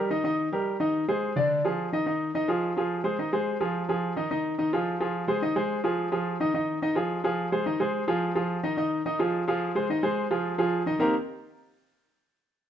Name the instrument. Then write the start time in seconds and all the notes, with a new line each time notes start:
grand piano
0.10 D#3 D#4 D#5
0.24 D#3 D#4 D#5
0.52 G3 G4 A#4
0.80 D#3 D#4 D#5
1.08 G#3 G#4 C5
1.36 D3 D4 D5
1.65 F3 F4 G#4
1.93 D#3 D#4 D#5
2.06 D#3 D#4 D#5
2.35 D#3 D#4 D#5
2.48 F3 F4 G#4
2.77 F3 F4 G#4
3.04 G#3 G#4 C5
3.19 D#3 D#4 D#5
3.33 G#3 G#4 C5
3.60 F3 F4 G#4
3.89 F3 F4 G#4
4.16 D#3 D#4 D#5
4.31 D#3 D#4 D#5
4.58 D#3 D#4 D#5
4.73 F3 F4 G#4
5.00 F3 F4 G#4
5.28 G#3 G#4 C5
5.42 D#3 D#4 D#5
5.56 G#3 G#4 C5
5.84 F3 F4 G#4
6.12 F3 F4 G#4
6.40 D#3 D#4 D#5
6.54 D#3 D#4 D#5
6.82 D#3 D#4 D#5
6.95 F3 F4 G#4
7.24 F3 F4 G#4
7.52 G#3 G#4 C5
7.66 D#3 D#4 D#5
7.80 G#3 G#4 C5
8.08 F3 F4 G#4
8.35 F3 F4 G#4
8.63 D#3 D#4 D#5
8.77 D#3 D#4 D#5
9.05 D#3 D#4 D#5
9.19 F3 F4 G#4
9.48 F3 F4 G#4
9.75 G#3 G#4 C5
9.90 D#3 D#4 D#5
10.03 G#3 G#4 C5
10.31 F3 F4 G#4
10.58 F3 F4 G#4
10.86 D#3 D#4 D#5
10.99 D#3 A#3 C4 D#4 G4 A#4